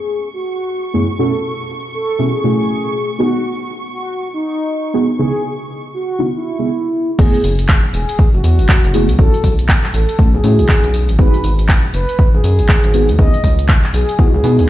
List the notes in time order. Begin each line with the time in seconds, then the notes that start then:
Already playing: G#4 C#6
0.34 F#4
0.94 F#2 A3 B3 C#4 E4 G#4
1.19 B2 C#4 E4 F#4 A4
1.94 A4
2.19 B2 C#4 E4 F#4 G#4
2.34 G#4
2.44 B2 A3 C#4 E4 F#4
3.19 B3 D#4 F#4 G#4
3.94 F#4
4.34 D#4
4.94 B3 D#4 F#4 G#4
5.19 C#3 B3 D#4 E4 G#4
5.94 F#4
6.19 C#3 B3 D#4 E4 F#4
6.34 E4
6.59 C#3 B3 D#4 E4 G#4
7.19 F#1 A3 B3 E4 G#4, kick, crash, tambourine
7.34 closed hi-hat, tambourine
7.44 F#1, open hi-hat, tambourine
7.59 closed hi-hat, tambourine
7.69 kick, clap, tambourine
7.84 tambourine
7.94 E1 G#4, open hi-hat, tambourine
8.09 closed hi-hat, tambourine
8.19 kick, tambourine
8.34 F#1 F#4, tambourine
8.44 E2, open hi-hat, tambourine
8.59 F#1, open hi-hat, tambourine
8.69 kick, clap, tambourine
8.84 F#1, closed hi-hat, tambourine
8.94 A3 B3 E4 G#4, open hi-hat, tambourine
9.09 C#2, closed hi-hat, tambourine
9.19 B1 A3 C#4 E4 F#4 A4, kick, tambourine
9.34 closed hi-hat, tambourine
9.44 B1, kick, open hi-hat, tambourine
9.59 closed hi-hat, tambourine
9.69 kick, clap, tambourine
9.84 clap, tambourine
9.94 A1 A4, open hi-hat, tambourine
10.09 closed hi-hat, tambourine
10.19 A3 C#4 E4 F#4, kick, tambourine
10.34 B1 G#4, tambourine
10.44 A2 A3 C#4 E4 F#4, open hi-hat, tambourine
10.59 B1, open hi-hat, tambourine
10.69 kick, clap, tambourine
10.84 B1, closed hi-hat, tambourine
10.94 open hi-hat, tambourine
11.09 G#1, closed hi-hat, tambourine
11.19 G#1 B3 D#4 F#4 G#4 B4, kick, tambourine
11.34 closed hi-hat, tambourine
11.44 G#1, open hi-hat, tambourine
11.59 closed hi-hat, tambourine
11.69 kick, clap, tambourine
11.84 tambourine
11.94 F#1 B4, open hi-hat, tambourine
12.09 closed hi-hat, tambourine
12.19 kick, tambourine
12.34 G#1 G#4, tambourine
12.44 F#2, open hi-hat, tambourine
12.59 G#1, open hi-hat, tambourine
12.69 kick, clap, tambourine
12.84 G#1, closed hi-hat, tambourine
12.94 B3 D#4 F#4 G#4, open hi-hat, tambourine
13.09 D#2, closed hi-hat, tambourine
13.19 C#2 B3 D#4 E4 G#4 D#5, kick, tambourine
13.34 closed hi-hat, tambourine
13.44 C#2, kick, open hi-hat, tambourine
13.59 closed hi-hat, tambourine
13.69 kick, clap, tambourine
13.84 clap, tambourine
13.94 B1 G#4, open hi-hat, tambourine
14.09 closed hi-hat, tambourine
14.19 B3 D#4 E4 F#4, kick, tambourine
14.34 C#2 G#4, tambourine
14.44 B2 B3 D#4 E4 G#4, open hi-hat, tambourine
14.59 C#2, open hi-hat, tambourine